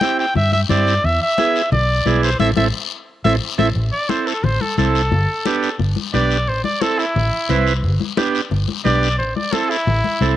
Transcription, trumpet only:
Already playing: G5
0.19 G5
0.37 E5
0.53 E5
0.70 D5
1.05 E5
1.22 E5
1.72 D5
2.24 C5
2.40 E5
2.56 E5
3.24 E5
3.58 E5
3.92 D5
4.09 C5
4.27 A4
4.44 C5
4.61 A4
4.78 A4
6.14 D5
6.48 C5
6.64 D5
6.81 A4
6.99 E4
8.85 D5
9.18 C5
9.36 D5
9.52 A4
9.70 E4

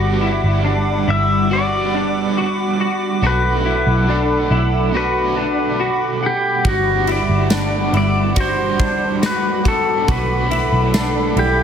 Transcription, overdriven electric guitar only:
Already playing: G3 B3 D4 F#4
1.50 G3 B3 D4
1.54 F#4
3.22 B2 F#3 A3 D4 A4
4.07 F#3 A3 D4 A4
4.92 B2 A3 D4
4.96 A4
6.64 G3 B3 D4 F#4
7.50 G3 B3 D4 F#4
8.35 G3 D4 F#4
9.65 B3 D4 F#4
10.07 B2 F#3 A3 D4 F#4
10.94 A3 D4

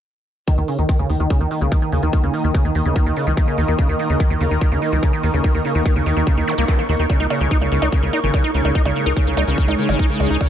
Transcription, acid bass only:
0.48 D#3
0.58 D#3
0.68 C#3
0.79 D#3
0.89 D#3
0.99 C#3
1.10 D#3
1.20 D#3
1.30 C#3
1.41 D#3
1.51 D#3
1.61 C#3
1.72 D#3
1.82 D#3
1.92 C#3
2.03 D#3
2.13 D#3
2.23 C#3
2.34 D#3
2.44 D#3
2.55 C#3
2.65 D#3
2.75 D#3
2.86 C#3
2.96 D#3
3.06 D#3
3.17 C#3
3.27 D#3
3.37 D#3
3.48 C#3
3.58 D#3
3.68 D#3
3.79 C#3
3.89 D#3
3.99 D#3
4.10 C#3
4.20 D#3
4.30 D#3
4.41 C#3
4.51 D#3
4.61 D#3
4.72 C#3
4.82 D#3
4.92 D#3
5.03 C#3
5.13 D#3
5.23 D#3
5.34 C#3
5.44 D#3
5.54 D#3
5.65 C#3
5.75 D#3
5.85 D#3
5.96 C#3
6.06 D#3
6.17 D#3
6.27 C#3
6.37 D#3
6.48 D#3
6.58 A#3
6.68 D#3
6.79 D#3
6.89 D#3
6.99 D#3
7.10 C#3
7.20 D#4
7.30 C#3
7.41 C#3
7.51 D#4
7.61 C#3
7.72 C#3
7.82 D#4
7.92 C#3
8.03 C#3
8.13 D#4
8.23 C#3
8.34 C#3
8.44 D#4
8.54 C#3
8.65 C#3
8.75 D#4
8.85 C#3
8.96 C#3
9.06 D#4
9.16 C#3
9.27 C#3
9.37 D#4
9.48 C#3
9.58 C#3
9.68 D#4
9.79 C#3
9.89 C#3
9.99 D#4
10.10 C#3
10.20 C#3
10.30 D#4
10.41 C#3

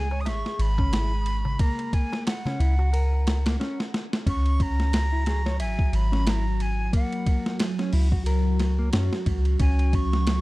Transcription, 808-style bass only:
Already playing: C#2
0.27 G#1
0.59 G#1
2.60 C#2
4.26 C#2
5.60 G#1
5.93 G#1
7.93 C#2
8.93 F#2
9.26 C#2
9.60 C#2

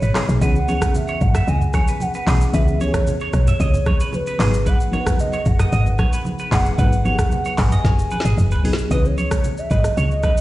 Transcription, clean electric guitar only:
0.03 B4
0.16 G#4
0.42 B4
0.69 C#5
1.09 C#5
1.35 E5
1.48 D#5
1.75 C#5
1.89 B4
2.15 B4
2.28 G#4
2.54 B4
2.81 C#5
3.21 C#5
3.48 E5
3.61 D#5
3.87 C#5
4.01 B4
4.27 B4
4.40 G#4
4.67 B4
4.93 C#5
5.34 C#5
5.60 D#5
5.73 D#5
5.99 C#5
6.13 B4
6.40 B4
6.52 G#4
6.79 B4
7.05 C#5
7.46 C#5
7.72 D#5
7.85 C#5
8.12 B4
8.25 G#4
8.52 B4
8.65 G#4
8.91 D#5
9.18 C#5
9.71 B4
9.98 C#5
10.24 B4

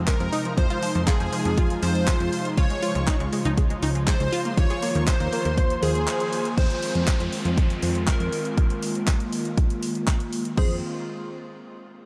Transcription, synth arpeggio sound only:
0.08 F3
0.20 F3
0.33 D#4
0.45 F3
0.58 F3
0.70 F4
0.83 F3
0.95 F3
1.08 F4
1.20 F3
1.33 F3
1.45 F3
1.58 F4
2.58 F4
2.70 G#3
2.83 F4
2.95 G#3
3.08 D#4
3.20 G#3
3.33 G#3
3.45 D#4
3.58 G#3
3.70 G#3
3.83 D#4
3.95 G#3
4.08 G#3
4.20 G#3
4.32 F4
4.45 A#3
4.58 A#3
4.70 G#4
4.83 A#3
4.95 A#3
5.08 C5
5.20 A#3
5.33 A#3
5.45 A#3
5.58 C5
10.58 C5

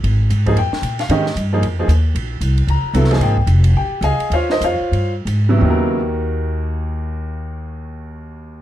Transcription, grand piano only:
0.46 F3 A#3 D#4 G#4
0.58 G5
1.00 F5
1.10 D#3 G#3 C#4 G4 D#5
1.53 F3 A#3 D#4 G#4
1.79 F3 A#3 D#4 G#4
2.70 A#5
2.94 F#3 B3 E4 A4
3.10 F3 A#3 D#4 G#4 G#5
3.23 G5
3.77 G4 G5
4.04 G#4 D#5 F5 G#5
4.33 F4 C5 C#5 F5
4.51 D#4 A#4 C5 D#5
4.64 F4 C5 C#5 F5
5.49 C#3 F#3 B3 E4
5.58 D#2 D#3
5.64 A#3 F#4
5.70 A#4

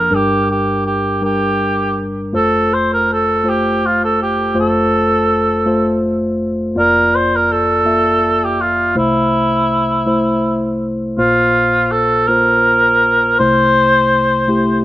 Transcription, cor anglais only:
Already playing: A#4
0.15 G4
0.51 G4
0.86 G4
1.25 G4
2.36 A4
2.74 C5
2.94 A#4
3.13 A4
3.49 G4
3.86 F4
4.04 A4
4.23 G4
4.60 A4
6.79 A#4
7.15 C5
7.36 A#4
7.52 A4
8.44 G4
8.61 F4
8.98 E4
11.19 F4
11.91 A4
12.28 A#4
13.39 C5

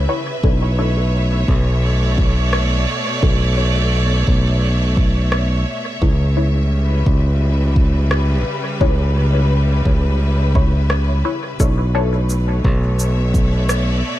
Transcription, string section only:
Already playing: C#3 G3 B4 E5
0.44 B2
0.59 C#5
0.74 A3
1.86 D5
6.02 C#3
6.53 G3
6.81 B4
11.59 B2
11.98 A3
12.48 C#5
12.98 E5
13.33 D5

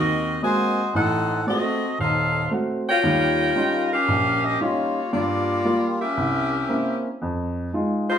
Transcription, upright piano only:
Already playing: D#2 D#3
0.42 G#3 A#3 C4 F#4
0.94 A1 A2
1.47 A3 C4 F#4
1.99 D#1
2.51 A3 C4 F#4
3.03 D#2 G3
3.56 G3 C#4 D#4 F4
4.08 A#1
4.60 G3 C#4 D#4 F4
5.13 G2
5.65 G3 A#3 F4
6.17 C2
6.69 A#3 C4 C#4 E4
7.22 F2
7.73 G#3 D#4 F4

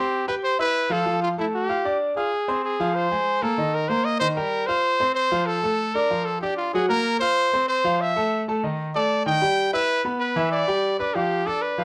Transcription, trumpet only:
Already playing: G4
0.28 B4
0.44 C5
0.60 B4
0.92 A4
1.23 F4
1.39 E4
1.55 G4
2.16 G#4
2.65 G#4
2.95 C5
3.42 A4
3.74 A#4
3.89 C5
4.05 D#5
4.20 C5
4.36 A#4
4.67 C5
5.15 C5
5.46 A4
5.95 A#4
6.25 A4
6.42 G4
6.57 F4
6.73 G#4
6.89 A#4
7.20 C5
7.68 C5
8.01 E5
8.95 D5
9.26 G5
9.73 B4
10.20 B4
10.52 D5
10.99 B4
11.15 G4
11.46 A4
11.62 B4

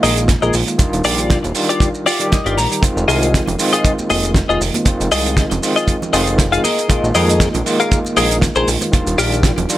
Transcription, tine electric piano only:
Already playing: D#3 G#3 A#3 F4
0.78 D#3 G3 D4 F4
1.55 D#3 G3 D4 F4
2.19 D#3 G3 G4
2.82 D#3 G#3 C4 F4
3.58 D#3 G#3 C4 F4
4.85 D#3 G#3 C4 F4
5.62 D#3 G#3 C4 F4
6.13 D#3 G#3 C4 F4
6.88 D#3 G#3 A#3 F4
7.65 D#3 G#3 A#3 F4
8.92 D#3 G3 D4 F4
9.69 D#3 G3 D4 F4

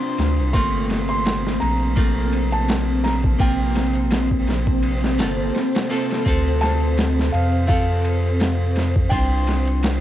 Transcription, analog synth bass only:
0.19 D2
0.39 C2
0.54 G1
1.62 A#1
4.48 A#1
5.19 G1
6.27 D2
7.34 F2
9.12 C2

